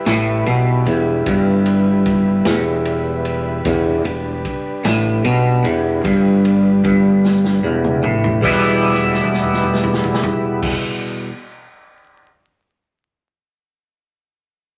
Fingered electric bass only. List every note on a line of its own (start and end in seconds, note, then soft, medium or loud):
0.07 0.44 A1 loud
0.47 0.84 B1 medium
0.86 1.23 E1 loud
1.26 2.42 G1 medium
2.46 3.61 E1 loud
3.65 4.02 E1 medium
4.05 4.42 E1 medium
4.85 5.22 A1 loud
5.24 5.62 B1 loud
5.65 6.02 E1 loud
6.05 6.80 G1 medium
6.84 7.60 G1 loud
7.64 8.01 E1 loud
8.04 8.41 A1 medium
8.44 10.75 E1 medium